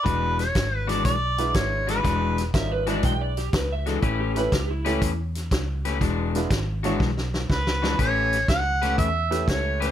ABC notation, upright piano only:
X:1
M:4/4
L:1/8
Q:"Swing" 1/4=121
K:Emix
V:1 name="Upright piano"
z4 z [G,DEFB]3 | z2 [=G,C^D=F^A] [^G,=DE^FB]2 z3 | z [A,CE=GB] z [A,CEGA] z4 | z [G,DEFB] z [G,DEFc] z4 |
z4 z [A,CE=GB]3 |]